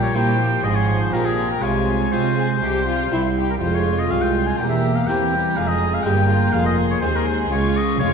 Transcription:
Already playing: A#1 A#2 G3 G4 A#5
0.03 C#5
0.14 A#2 G3 A#3 C4 E4 G4 C5 G5
0.40 F3
0.63 G#1 G#2 G#4 D#5 C6
0.75 C#5
1.00 C5
1.13 A#1 A#2 G#3 C4 F4 G4 A#4 A#5
1.25 G#4
1.50 A#4
1.61 C2 C3 G#3 F4 C#5 G#5
2.12 C3 G#3 C4 F4 C5
2.37 G#4
2.62 C2 C3 G3 G4 C6
2.87 F4
3.12 C2 C4 E4
3.37 G4
3.50 A#4
3.61 F1 F2 G#3 F4 C5 C6
3.74 C#5
3.99 D#5
4.10 C2 G#3 C4 F4 F5 C6
4.22 G5
4.46 G#5
4.57 E1 E2 A#3 G4 G5 A#5
4.69 E5
4.95 F5
5.07 E2 E3 A#3 C4 G4 G5 A#5
5.33 G3
5.56 F1 F2 G#3 G#4 F5
5.67 D#5
5.94 F5
6.03 G1 G2 G#3 A#3 C4 G4 G#4 G5
6.29 F4
6.52 F1 F2 G#4 F5 C6
6.66 D#5
6.90 C#5
7.01 D#2 G#3 C4 G#4 C5 C6
7.16 A#4
7.27 C5
7.50 C#2 F4 C#5 C#6
7.77 D#5
7.99 F1 F2 G#3 C#4 F4 C#5 C#6

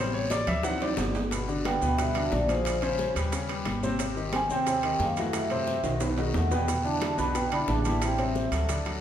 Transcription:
Already playing: A1 C3 G3 B3 C5
0.14 C#5, high conga
0.30 D5, high bongo, high conga, high timbale, short guiro, maracas
0.47 D2 E5, high bongo, high conga, low conga, high timbale, short guiro, maracas
0.63 E3 F#3 C4 F#5, high bongo, high conga, high timbale, long guiro, maracas
0.80 D5, high bongo, high conga, high timbale
0.97 G1, high bongo, low bongo, high conga, low timbale, short guiro, maracas
1.14 high bongo, high conga, low timbale, short guiro, maracas
1.31 B2 B3 B4, high bongo, high conga, high timbale, long guiro, maracas
1.48 D3 D4 F#4, high bongo, high conga, maracas
1.65 B3 G5, high bongo, high conga, high timbale, short guiro, maracas
1.81 D2 B2 B3 B4, high bongo, high conga, short guiro, maracas
1.97 B2 G3 B3 B4 E5, high bongo, high conga, high timbale, long guiro, maracas
2.15 D3 D4 F#4, high bongo, high conga, high timbale, maracas
2.30 A#1 F#3 D5, high bongo, low bongo, high conga, short guiro, maracas
2.47 F3 F4 G#4 C5, high conga, high timbale, short guiro, maracas
2.65 high bongo, high conga, high timbale, long guiro, maracas
2.82 C#3 C#4 C5, high bongo, high conga, high timbale, maracas
2.99 high bongo, high conga, short guiro, maracas
3.16 D#2 G3 G4 B4, high conga, high timbale, short guiro, maracas
3.32 C#3 C#4 C#5, high bongo, high conga, high timbale, long guiro, maracas
3.49 G3 G4 B4, high bongo, high conga, high timbale, maracas
3.65 G#1, high bongo, low bongo, high conga, high timbale, short guiro, maracas
3.83 C3 C4 C5, high bongo, high conga, short guiro, maracas
3.99 C3 C4 C5, high bongo, high conga, high timbale, long guiro, maracas
4.16 D#3 D#4 G4, high bongo, high conga, maracas
4.33 C4 G#5, high bongo, high conga, high timbale, short guiro, maracas
4.49 D#2 C3 C4 C5 G5, high bongo, high conga, short guiro, maracas
4.66 C3 C4 C5, high bongo, high conga, high timbale, long guiro, maracas
4.83 D#3 D#4 G4, high bongo, high conga, high timbale, maracas
4.99 F#2 G#3, high bongo, low bongo, high conga, short guiro, maracas
5.04 F5
5.17 E3 A3 E4 F#4, high timbale, short guiro, maracas
5.21 E5
5.33 high bongo, high conga, high timbale, long guiro, maracas
5.50 C3 C4 C5, high bongo, high conga, high timbale, maracas
5.67 high bongo, high conga, short guiro, maracas
5.83 B1 D#3 D#4 F#4, high conga, high timbale, short guiro, maracas
6.00 B2 B3 B4, high bongo, high conga, high timbale, long guiro, maracas
6.17 D#3 D#4 F#4, high bongo, high conga, low timbale, maracas
6.34 E2 A3 F#5, high bongo, low bongo, high conga, low timbale, short guiro, maracas
6.51 B2 B3 B4 G5, high bongo, low timbale, short guiro, maracas
6.68 B2 B3 B4, high bongo, high conga, high timbale, long guiro, maracas
6.84 D3 D4 E4 A5, high bongo, high conga, maracas
7.01 high bongo, high conga, high timbale, short guiro, maracas
7.18 B1 B2 B3 D4 B4 B5, high bongo, high conga, short guiro, maracas
7.35 B2 B3 B4 G5, high bongo, high conga, high timbale, long guiro, maracas
7.51 D3 D4 E4 B5, high bongo, high conga, high timbale, maracas
7.68 A1 D4 A5, high bongo, low bongo, high conga, low timbale, short guiro, maracas
7.85 E3 E4 G4, high conga, high timbale, short guiro, maracas
8.02 C4 G5, high bongo, high conga, high timbale, long guiro, maracas
8.18 C3 G3 C4 C5 E5, high bongo, high conga, high timbale, maracas
8.35 high bongo, high conga, short guiro, maracas
8.51 D2 F#3 F#4 A4, high conga, high timbale, short guiro, maracas
8.69 D3 D4 D5, high bongo, high conga, high timbale, long guiro, maracas
8.85 F#3 F#4 A4, high bongo, high conga, high timbale, maracas

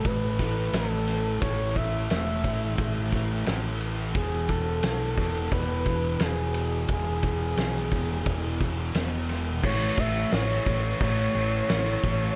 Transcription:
Already playing: A2 E3 A3
0.05 A1 B4, kick, ride
0.39 E3 A3, kick, ride
0.73 A1 A2 E3 A3 A4, snare, ride
1.08 snare, ride
1.41 A1 A2 E3 A3 C#5, kick, ride
1.76 E5, kick, ride
2.10 E1 A2 E3 A3 E5, snare, ride
2.43 A1 E3 A3, kick, ride
2.78 A1, kick, ride
3.12 E3 A3, kick, ride
3.45 A1 A2 E3 A3, snare, ride
3.81 ride
4.13 E1 E2 B2 E3 G#4, kick, ride
4.49 A4, kick, ride
4.82 B1 E2 B2 E3, snare, ride
5.17 E1 B2 E3, kick, ride
5.52 E1 B4, kick, ride
5.86 B2 E3, kick, ride
6.20 E1 E2 B2 E3 G#4, snare, ride
6.54 ride
6.88 E1 E2 B2 E3 G#4, kick, ride
7.23 kick, ride
7.57 B1 E2 B2 E3, snare, ride
7.91 E1 B2 E3, kick, ride
8.26 E1, kick, ride
8.60 B2 E3, kick, ride
8.95 E1 E2 B2 E3, snare, ride
9.29 snare, ride
9.63 A1 A2 E3 A3 C#5, kick, crash
9.97 A1 E3 A3 E5, kick, crash
10.32 A1 A2 E3 A3 C#5, snare, crash
10.66 A1 E3 A3, kick, crash
11.00 A1 A2 E3 A3 C#5, kick, crash
11.35 A1 E3 A3, crash
11.69 A1 A2 E3 A3, snare, crash
12.03 A1 E3 A3, kick, crash

